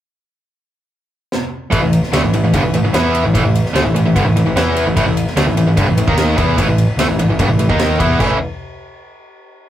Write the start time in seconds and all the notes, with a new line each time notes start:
1.32 snare
1.72 A1 A2 E3, kick, ride
1.82 A1 A2 E3
1.93 ride
2.03 snare
2.12 D2 D3 A3, snare, ride
2.23 A1 A2 E3
2.33 A1 A2 E3, ride
2.44 A1 A2 E3
2.54 G1 G2 D3, kick, ride
2.64 A1 A2 E3
2.74 A1 A2 E3, ride
2.84 A1 A2 E3
2.94 E2 E3 B3 E4, snare, ride
3.15 ride
3.25 A1 A2 E3
3.35 A1 A2 E3, kick, ride
3.45 A1 A2 E3
3.55 ride
3.66 snare
3.75 D2 D3 A3, snare, ride
3.85 A1 A2 E3
3.95 A1 A2 E3, ride
4.06 A1 A2 E3
4.16 G1 G2 D3, kick, ride
4.25 A1 A2 E3
4.35 A1 A2 E3, ride
4.46 A1 A2 E3
4.56 E2 E3 B3 E4, snare, ride
4.76 ride
4.86 A1 A2 E3
4.97 A1 A2 E3, kick, ride
5.06 A1 A2 E3
5.17 ride
5.27 snare
5.37 D2 D3 A3, snare, ride
5.47 A1 A2 E3
5.57 A1 A2 E3, ride
5.67 A1 A2 E3
5.77 G1 G2 D3, kick, ride
5.88 A1 A2 E3
5.97 A1 A2 E3, ride
6.08 D#2 D#3 A#3 D#4, kick
6.18 snare, ride
6.38 E2 E3 B3 E4, kick, ride
6.58 A1 A2 E3, kick, ride
6.67 A1 A2 E3
6.78 ride
6.97 D2 D3 A3, snare, ride
7.08 A1 A2 E3
7.17 A1 A2 E3, ride
7.28 A1 A2 E3
7.39 G1 G2 D3, kick, ride
7.48 A1 A2 E3
7.59 A1 A2 E3, ride
7.69 D#2 D#3 A#3 D#4, kick
7.79 snare, ride
8.00 E2 E3 B3 E4, kick, ride
8.20 A1 A2 E3 A3 C#4 E4, kick, crash